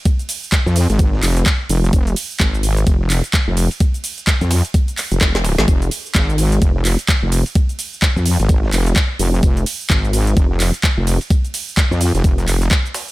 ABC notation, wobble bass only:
X:1
M:4/4
L:1/16
Q:"Swing 16ths" 1/4=128
K:Fm
V:1 name="Wobble bass" clef=bass
z4 z F,,2 A,,,3 F,,,2 z2 F,,,2 | F,,,2 z2 A,,,4 F,,,3 z2 F,,,2 z | z4 z F,,2 z4 F,,,4 A,,, | F,,,2 z2 A,,,4 F,,,3 z2 F,,,2 z |
z4 z F,,2 A,,,3 F,,,2 z2 F,,,2 | F,,,2 z2 A,,,4 F,,,3 z2 F,,,2 z | z4 z F,,2 F,,, F,,,2 F,,,2 z4 |]